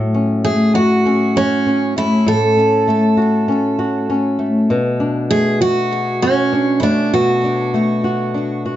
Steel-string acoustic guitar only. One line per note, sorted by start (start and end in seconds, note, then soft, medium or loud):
0.45 0.75 G#4 medium
0.75 1.37 F#4 medium
1.37 1.93 C#4 medium
1.98 2.28 E4 medium
2.28 4.06 A4 medium
5.31 5.59 G#4 medium
5.62 6.24 F#4 medium
6.22 6.79 C#4 medium
6.80 7.11 D4 medium
6.80 6.84 E4 medium
7.14 8.76 F#4 medium